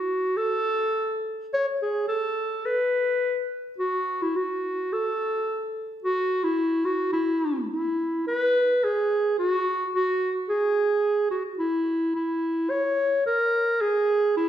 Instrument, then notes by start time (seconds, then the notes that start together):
clarinet
Already playing: F#4
0.37 A4
1.54 C#5
1.82 G#4
2.08 A4
2.66 B4
3.78 F#4
4.22 E4
4.36 F#4
4.93 A4
6.04 F#4
6.44 E4
6.85 F#4
7.12 E4
7.71 E4
8.27 B4
8.84 G#4
9.39 F#4
9.94 F#4
10.49 G#4
11.31 F#4
11.59 E4
12.15 E4
12.70 C#5
13.26 A#4
13.81 G#4
14.37 E4